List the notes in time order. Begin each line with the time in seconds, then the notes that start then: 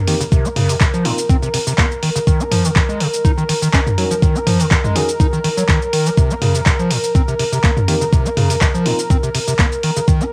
Already playing: A#4
0.08 D#3 A#3 C4 D#4 G4, open hi-hat
0.21 C#3, shaker
0.32 C3, kick, shaker
0.45 C4, shaker
0.56 C#3, mid tom, open hi-hat
0.69 C3, open hi-hat, shaker
0.81 C3, kick, clap, shaker
0.94 F3, shaker
1.05 A#2 A#3 C4 D#4 F4, open hi-hat
1.18 shaker
1.29 C4, kick, shaker
1.42 C3, shaker
1.54 C3, open hi-hat
1.67 C3, shaker
1.78 A#3, kick, clap, shaker
1.92 shaker
2.03 D#3, open hi-hat
2.16 C#3, shaker
2.27 D#3, kick, shaker
2.40 D#4, shaker
2.52 F3, mid tom, open hi-hat
2.65 D#3, shaker
2.76 D#3, kick, clap, shaker
2.89 G#3, shaker
3.00 C#3, open hi-hat
3.14 shaker
3.25 D#4, kick, shaker
3.38 D#3, shaker
3.49 D#3, open hi-hat
3.62 D#3, shaker
3.73 C#4, kick, clap, shaker
3.87 mid tom, shaker
3.98 F#3 C#4 D#4 F#4 A#4, open hi-hat
4.11 F3, shaker
4.22 D#3, kick, shaker
4.35 D#4, shaker
4.47 F3, mid tom, open hi-hat
4.60 D#3, open hi-hat, shaker
4.71 D#3, kick, clap, shaker
4.84 G#3, mid tom, shaker
4.95 C#3 C#4 D#4 F#4 G#4, open hi-hat
5.09 shaker
5.20 D#4, kick, shaker
5.33 D#3, shaker
5.44 D#3, open hi-hat
5.57 F#3, shaker
5.69 D#3, kick, clap, shaker
5.82 shaker
5.93 D#3, open hi-hat
6.06 F3, shaker
6.17 C3, kick, shaker
6.30 C4, shaker
6.42 C#3, mid tom, open hi-hat
6.55 C3, shaker
6.66 C3, kick, clap, shaker
6.79 F3, shaker
6.91 A#2, open hi-hat
7.04 shaker
7.15 C4, kick, shaker
7.28 C3, shaker
7.39 C3, open hi-hat
7.52 C3, shaker
7.64 A#3, kick, clap, shaker
7.77 mid tom, shaker
7.88 D#3 A#3 C4 D#4 G4, open hi-hat
8.01 C#3, shaker
8.12 C3, kick, shaker
8.25 C4, shaker
8.37 C#3, mid tom, open hi-hat
8.50 C3, open hi-hat, shaker
8.61 C3, kick, clap, shaker
8.74 F3, shaker
8.86 A#2 A#3 C4 D#4 F4, open hi-hat
8.99 shaker
9.10 C4, kick, shaker
9.23 C3, shaker
9.35 C3, open hi-hat
9.48 C3, shaker
9.59 A#3, kick, clap, shaker
9.72 shaker
9.83 D#3, open hi-hat
9.97 C#3, shaker
10.08 D#3, kick, shaker
10.21 D#4, shaker